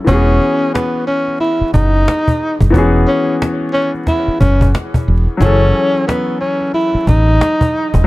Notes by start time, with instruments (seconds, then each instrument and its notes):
0.05 fingered electric bass E1, upright piano E3 B3 C#4, tenor saxophone C#4, cajon bass
0.10 upright piano F#4 G#4
0.41 cajon slap
0.61 cajon slap
0.74 tenor saxophone B3, cajon slap
0.94 cajon slap
1.07 tenor saxophone C#4, cajon slap
1.28 cajon slap
1.40 tenor saxophone E4, cajon slap
1.60 muted fingered electric bass stroke, cajon slap
1.74 fingered electric bass F#1, tenor saxophone D#4, cajon bass
1.94 cajon slap
2.08 cajon slap
2.28 cajon bass
2.42 cajon slap
2.60 fingered electric bass F#1, cajon bass
2.70 upright piano E3 B3 C#4, cajon bass
2.74 fingered electric bass E1, upright piano F#4 G#4
2.94 cajon slap
3.08 tenor saxophone C#4, cajon slap
3.28 cajon slap
3.42 cajon slap
3.61 cajon slap
3.73 tenor saxophone C#4, cajon slap
3.94 cajon slap
4.07 tenor saxophone E4, cajon bass, cajon slap
4.27 muted fingered electric bass stroke, cajon slap
4.40 fingered electric bass F#1, tenor saxophone C#4, cajon bass
4.61 cajon bass
4.75 cajon slap
4.94 cajon bass
5.08 fingered electric bass E1, cajon slap
5.27 cajon slap
5.37 fingered electric bass F#1, upright piano E3 F#3 C#4, cajon bass
5.41 tenor saxophone C#4, upright piano G#4 A4
5.74 cajon slap
5.95 cajon slap
6.07 tenor saxophone B3, cajon slap
6.27 cajon slap
6.40 tenor saxophone C#4, cajon slap
6.61 cajon slap
6.74 tenor saxophone E4, cajon slap
6.93 muted fingered electric bass stroke, cajon slap
7.07 fingered electric bass A1, tenor saxophone D#4, cajon bass
7.28 cajon slap
7.41 cajon slap
7.61 cajon bass
7.75 cajon slap
7.94 fingered electric bass E1, cajon bass